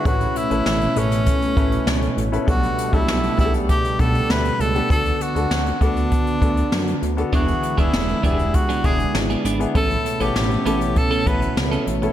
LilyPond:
<<
  \new Staff \with { instrumentName = "Tenor saxophone" } { \time 4/4 \key a \mixolydian \tempo 4 = 99 fis'8 e'4 cis'2 r8 | fis'8. e'8. e'8 g'8 a'8 b'8 a'8 | a'8 fis'4 d'2 r8 | fis'8. e'8. e'8 fis'8 gis'8 r4 |
a'8. g'8. g'8 a'8 b'8 r4 | }
  \new Staff \with { instrumentName = "Grand piano" } { \time 4/4 \key a \mixolydian <cis' e' a' b'>8. <cis' e' a' b'>8. <cis' e' a' b'>4 <cis' e' a' b'>4~ <cis' e' a' b'>16 <cis' e' a' b'>16 | <g b d' a'>8. <b d' g' a'>8. <b d' g' gis' a'>4 <b d' g' a'>4~ <b d' g' a'>16 <b d' g' a'>16 | <b d' fis' a'>8. <b d' fis' a'>8. <b d' fis' a'>4 <b d' fis' a'>4~ <b d' fis' a'>16 <b d' fis' a'>16 | <b d' e' gis'>8. <b d' e' gis'>8. <b d' e' g' gis'>4 <b d' e' gis'>4~ <b d' e' gis'>16 <b d' e' gis'>16 |
<b cis' e' a'>8. <b cis' e' a'>8. <b cis' e' a'>4 <b cis' e' a'>4~ <b cis' e' a'>16 <b cis' e' a'>16 | }
  \new Staff \with { instrumentName = "Grand piano" } { \clef bass \time 4/4 \key a \mixolydian a,4. r2 r8 | b,4. r2 r8 | d4. r2 r8 | e4. r2 r8 |
a,4. r2 r8 | }
  \new Staff \with { instrumentName = "Clean electric guitar" } { \time 4/4 \key a \mixolydian r1 | r1 | r1 | <b d' gis'>16 r8 <b d' gis'>16 r8 <b d' gis'>16 r8 <b d' gis'>16 <b d' gis'>16 r8 <b d' gis'>16 <b d' gis'>16 r16 |
<b cis' a'>16 r8 <b cis' a'>16 r8 <b cis' a'>16 r8 <b cis' a'>16 <b cis' a'>16 r8 <b cis' a'>16 r8 | }
  \new Staff \with { instrumentName = "Analog synth pad" } { \time 4/4 \key a \mixolydian << { <a cis'>1 | <g a>1 | <b fis'>1 | <gis e'>1 |
<a cis'>1 | } \\ { b,1~ | b,1 | d1~ | d1 |
b,1 | } >> }
  \new Staff \with { instrumentName = "Analog synth bass" } { \clef bass \time 4/4 \key a \mixolydian a,,8 r16 a,,16 a,,8 a,,8. r16 a,,8 cis,8 a,,8 | b,,8 r16 b,,16 b,,8 b,,8. r16 b,,8 d,8 cis,8 | d,8 r16 d,16 d,8 d,8. r16 d,8 fis,8 d,8 | e,,8 r16 e,,16 e,,8 e,,8. r16 e,,8 gis,,8 gis,,8 |
a,,8 r16 a,,16 a,,8 a,,8. r16 a,,8 cis,8 a,,8 | }
  \new DrumStaff \with { instrumentName = "Drums" } \drummode { \time 4/4 <hh bd>16 hh16 hh16 hh16 sn16 hh16 hh16 hh16 <hh bd>16 hh16 <hh bd>16 hh16 sn16 hh16 hh16 hh16 | <hh bd>16 hh16 hh16 <hh bd>16 sn16 hh16 <hh bd>16 hh16 <hh bd>16 hh16 <hh bd>16 hh16 sn16 hh16 hh16 hh16 | <hh bd>16 hh16 hh16 hh16 sn16 hh16 <hh bd>16 hh16 <hh bd>16 hh16 <hh bd>16 hh16 sn16 hh16 hh16 hh16 | <hh bd>16 hh16 hh16 <hh bd>16 sn16 hh16 <hh bd>16 hh16 <hh bd>16 hh16 <hh bd>16 hh16 sn16 hh16 hh16 hh16 |
<hh bd>16 hh16 hh16 hh16 sn16 hh16 hh16 hh16 <hh bd>16 hh16 <hh bd>16 hh16 sn16 hh16 hh16 hh16 | }
>>